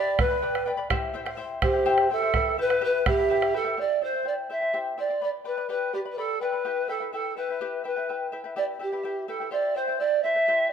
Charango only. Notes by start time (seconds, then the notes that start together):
Already playing: G4 B4 D5 G5 B5
0.19 B4 D5 G5 B5
0.30 B4 D5 B5
0.42 B4 D5 G5 B5
0.66 B4 D5 G5 B5
0.77 B4 D5 B5
0.90 E4 G4 C5 E5 G5
1.14 E4 C5 E5 G5
1.26 E4 C5 G5
1.37 E4 C5 E5 G5
1.62 E4 C5 E5 G5
1.73 E4 C5 G5
1.85 E4 G4 C5 E5 G5
2.10 E4 C5 E5 G5
2.22 E4 C5 G5
2.34 E4 B4 E5 G5
2.58 E4 B4 E5 G5
2.70 E4 B4 G5
2.81 E4 G4 B4 E5 G5
3.06 E4 B4 E5 G5
3.18 E4 B4 G5
3.30 E4 B4 E5 G5
3.53 E4 B4 E5 G5
3.65 E4 B4 G5
3.77 E4 G4 C5 E5 G5
4.01 E4 C5 E5 G5
4.13 E4 C5 G5
4.24 E4 C5 E5 G5
4.50 E4 C5 E5 G5
4.61 E4 C5 G5
4.73 E4 G4 C5 E5 G5
4.98 E4 C5 E5 G5
5.10 E4 C5 G5
5.21 B4 D5 G5 B5
5.45 B4 D5 G5 B5
5.57 B4 D5 B5
5.69 G4 B4 D5 G5 B5
5.93 B4 D5 G5 B5
6.05 B4 D5 B5
6.17 B4 D5 G5 B5
6.41 B4 D5 G5 B5
6.52 B4 D5 B5
6.65 E4 G4 B4 E5 G5
6.88 E4 B4 E5 G5
7.00 E4 B4 G5
7.13 E4 B4 E5 G5
7.37 E4 B4 E5 G5
7.49 E4 B4 G5
7.61 E4 G4 B4 E5 G5
7.84 E4 B4 E5 G5
7.96 E4 B4 G5
8.09 E4 B4 E5 G5
8.32 E4 B4 E5 G5
8.44 E4 B4 G5
8.56 E4 G4 B4 E5 G5
8.79 E4 B4 E5 G5
8.92 E4 B4 G5
9.03 E4 B4 E5 G5
9.28 E4 B4 E5 G5
9.40 E4 B4 G5
9.51 E4 G4 C5 E5 G5
9.75 E4 C5 E5 G5
9.88 E4 C5 G5
10.00 E4 C5 E5 G5
10.24 E4 C5 E5 G5
10.36 E4 C5 G5
10.48 E4 G4 C5 E5 G5